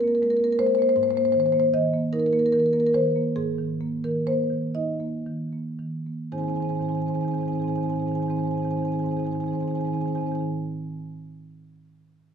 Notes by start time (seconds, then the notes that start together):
Already playing: G#2 C4
0.01 A#3 A#4
0.08 A#4
0.15 A#4
0.22 G#3 A#4
0.30 A#4
0.37 A#3 A#4
0.44 A#4
0.52 A#4
0.59 G#3 C5
0.67 C5
0.75 A#3 C5
0.82 C5
0.89 C5
0.96 G#2 C5
1.03 C5
1.11 C5
1.16 A#3 C5
1.25 C5
1.32 D#3 C5
1.40 C5
1.46 C5
1.52 A#3 C5
1.60 C5
1.74 D#3 D#5
1.93 A#3
2.13 D#4 A#4
2.19 A#4
2.26 A#4
2.33 A#3 A#4
2.39 A#4
2.46 A#4
2.52 D#3 A#4
2.60 A#4
2.66 A#4
2.73 A#3 A#4
2.80 A#4
2.87 A#4
2.94 D#3 C5
3.16 A#3
3.36 G#2 G#4
3.59 D#3
3.81 A#3
4.04 D#3 A#4
4.27 A#3 C5
4.50 D#3
4.75 D#4 D#5
5.00 A#3
5.26 D#3
5.53 A#3
5.79 D#3
6.06 A#3
6.32 G#2 D#3 C4 D#4 G#4 C5 G#5
6.38 G#2 C4 D#4 G#4 C5 G#5
6.42 D#3 G#5
6.46 G#2 C4 D#4 G#4 C5 G#5
6.52 D#3 G#4 C5
6.56 C4 D#4 G#5
6.60 G#2 D#3 G#4 C5 G#5
6.65 C4 D#4
6.69 G#2 D#3 C4 G#4 C5 G#5
6.74 D#4 G#4 G#5
6.78 G#2 D#3 C4 D#4 C5
6.83 G#4 C5 G#5
6.88 G#2 D#3 C4 D#4 G#4 G#5
6.93 D#3 C5 G#5
6.98 G#2 C4 D#4 G#4 C5
7.02 G#5
7.06 G#2 D#3 C4 D#4 G#4 C5 G#5
7.14 D#3 C4 D#4 G#4 C5 G#5
7.20 G#2 C4 D#4 G#4 C5 G#5
7.25 G#2 D#3 G#4 G#5
7.31 D#3 C4 D#4 C5 G#5
7.38 G#2 C4 D#4 G#4 C5 G#5
7.43 D#3 G#4 C5
7.47 G#2 C4 D#4 G#5
7.52 D#3 C4 G#4 C5 G#5
7.58 G#2 D#3 D#4 G#4 C5
7.62 C4 G#5
7.67 G#2 D#3 D#4 G#4 C5 G#5
7.72 C4 D#4 G#4 G#5
7.76 G#2 D#3 C5
7.81 C4 D#4 G#4 C5 G#5
7.86 G#2 D#3 C4 G#5
7.91 D#3 D#4 G#4 C5
7.96 G#2 C4 G#4 C5 G#5
8.00 D#3 D#4 G#5
8.06 G#2 C4 D#4 G#4 C5 G#5
8.11 D#3 C4 G#4 G#5
8.16 G#2 D#4 C5
8.20 D#3 C4 G#4 C5 G#5
8.26 G#2 D#3 C4 D#4 G#4 G#5
8.31 D#4 C5
8.37 G#2 D#3 C4 G#4 C5 G#5
8.42 G#2 D#4 G#4 G#5
8.47 D#3 C4 C5
8.51 C4 D#4 G#4 G#5
8.55 G#2 D#3 C5 G#5
8.60 C4 D#4 G#4 C5
8.64 G#2 D#3 D#4 G#5
8.70 D#3 C4 G#4 C5 G#5
8.76 G#2 C4 D#4 G#4 C5 G#5
8.82 G#2 D#3 D#4 G#4 G#5
8.87 D#3 C4 C5
8.92 G#2 C4 D#4 G#4 C5 G#5
8.99 D#3 D#4 G#4 C5 G#5
9.04 G#2 D#3 C4 G#5
9.09 C4 D#4 G#4 C5 G#5
9.13 G#2 D#3 G#4 C5
9.19 G#2 C4 D#4 G#5
9.24 D#3 C4 D#4 G#4 C5 G#5
9.31 G#2 D#3 D#4 G#4 C5 G#5
9.36 C4
9.40 G#2 D#3 D#4 G#4 C5 G#5
9.44 C4 G#4 G#5
9.48 C4 D#4 C5
9.53 G#2 D#3 G#4 C5 G#5
9.59 D#3 C4 D#4 C5 G#5
9.63 G#2 G#4
9.68 D#3 C4 D#4 G#4 C5 G#5
9.74 G#2 C4 D#4 G#4 C5 G#5
9.80 D#3 G#5
9.84 G#2 C4 D#4 G#4 C5 G#5
9.88 D#3 C5
9.93 G#2 C4 D#4 G#4 G#5
9.97 D#3 G#4 C5
10.01 G#2 C4 D#4 G#5
10.06 D#3 C4 G#4 C5 G#5
10.10 D#4 C5
10.15 G#2 D#3 C4 D#4 G#4 G#5
10.19 D#3 C5 G#5
10.24 G#2 C4 D#4 G#4 C5
10.29 D#3 G#4 G#5
10.34 G#2 C4 D#4 C5 G#5
10.39 D#3 G#4